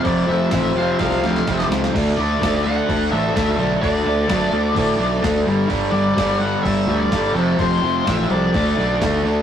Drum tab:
CC |----------------|x---------------|----------------|----------------|
HH |o---o---o---o---|o---o---o---o---|o---o---o---o---|o---o---o---o---|
SD |----o---oooooooo|----o-------o---|----o-------o---|----o-------o---|
BD |o---o---o---o---|o---o---o---o---|o---o---o---o---|o---o---o---o---|

CC |----------------|
HH |o---o---o---o---|
SD |----o-------o---|
BD |o---o---o---o---|